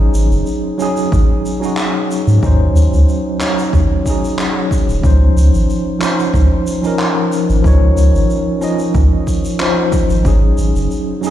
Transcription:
Already playing: F#3 C#4 D#4 G#4
0.14 G#1, shaker
0.31 F#1, shaker
0.46 shaker
0.78 F#3 C#4 D#4, shaker
0.82 G#4
0.97 shaker
1.12 G#1, kick, shaker
1.46 shaker
1.60 F#3 C#4 D#4, shaker
1.65 F#4
1.77 clap, shaker
2.11 shaker
2.27 G#2, shaker
2.41 D#2 F#3 C#4 D#4, kick, shaker
2.47 C5
2.75 D#2, shaker
2.93 C#2, shaker
3.09 shaker
3.40 F#3 C#4 D#4 C#5, clap, shaker
3.59 shaker
3.73 D#2, kick, shaker
4.05 F#3 C#4 D#4, kick, shaker
4.10 G#4
4.24 shaker
4.39 clap, shaker
4.71 kick, shaker
4.88 D#1, shaker
5.01 C#2 F3 C#4 D#4, kick, shaker
5.06 C5
5.36 C#2, shaker
5.54 G#1, shaker
5.70 shaker
5.99 F3 C#4 D#4, clap, shaker
6.04 C5
6.20 shaker
6.34 C#2, kick, shaker
6.67 shaker
6.82 F3 C#4 D#4, shaker
6.87 A#4
6.99 clap, shaker
7.32 shaker
7.49 G#1, shaker
7.62 C#2 F3 C#4 D#4, kick, shaker
7.67 C#5
7.96 C#2, shaker
8.13 G#1, shaker
8.30 shaker
8.61 F3 C#4 D#4 D#5, shaker
8.79 shaker
8.94 C#2, kick, shaker
9.27 kick, shaker
9.45 shaker
9.59 F3 C#4 D#4 C5, clap, shaker
9.92 kick, shaker
10.10 G#1, shaker
10.23 G#1 F#3 C#4 D#4, kick, shaker
10.28 G#4
10.58 G#1, shaker
10.75 F#1, shaker
10.91 shaker
11.21 F#3 C#4 D#4, shaker
11.27 G#4

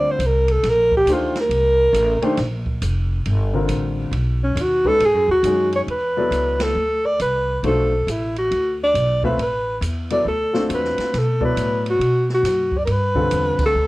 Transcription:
Already playing: D2 D3 G3 C4 F4 C5 D5
0.11 C5
0.19 C2, hi-hat pedal, ride
0.26 A#4
0.48 A4, ride
0.63 A#1, snare, ride
0.69 A#4
0.91 kick
0.97 G4
1.05 D2 D#3 A3 D4 G4 C5, hi-hat pedal, ride
1.13 F4
1.35 snare, ride
1.41 A#4
1.49 C2, ride
1.93 A1, hi-hat pedal, ride
2.22 D#3 A3 D4 G4 C5, muted upright bass stroke, ride
2.37 A#1, snare, ride
2.66 kick
2.82 F1, hi-hat pedal, ride
3.25 G1, ride
3.54 D3 G3 C4 F4 A#4
3.68 A1, hi-hat pedal, ride
4.12 B1, ride
4.44 C#4
4.56 D#2, hi-hat pedal, ride
4.62 F#4
4.85 D#3 G#3 C#4 F#4 A4 B4, kick
5.00 G#2, ride
5.05 G#4
5.14 F#2
5.28 D#2 F#4
5.43 F#2 D#3 G#3 C#4 F#4 G#4, hi-hat pedal, ride
5.73 C#5, ride
5.87 E2, ride
5.91 B4
6.17 F#3 B3 E4 A4 D5
6.31 C#2, hi-hat pedal, ride
6.60 A4, snare, ride
6.75 D2
7.05 D5
7.19 C2 B4, hi-hat pedal, ride
7.63 B1 F3 A3 D4 F#4 A4 C5, ride
8.07 A1 E4, hi-hat pedal, ride
8.36 F#4, ride
8.51 D2, ride
8.83 D5
8.94 B1, hi-hat pedal, ride
9.23 A3 C4 F4 B4 E5, kick
9.38 A1, ride
9.42 B4
9.81 E2, hi-hat pedal, ride
10.10 F#3 B3 E4 A4 D5, ride
10.25 D2 A4
10.53 A3 C4 D4 F4 F#4, snare
10.69 E2, hi-hat pedal, ride
10.75 B4
10.84 snare
10.98 muted upright bass stroke, snare, ride
11.14 B2, snare, ride
11.18 A4
11.41 F#3 B3 E4 A4 B4 D5, kick
11.56 A2, hi-hat pedal, ride
11.86 F#4, ride
11.99 B2, ride
12.29 snare
12.34 F#4
12.43 F#2, snare, hi-hat pedal, ride
12.72 kick
12.78 D5
12.85 G2 A#4, ride
12.92 B4
13.15 D3 G3 C4 F4 A4, kick
13.31 E2, hi-hat pedal, ride
13.58 muted upright bass stroke, kick, crash
13.65 A4
13.74 D2

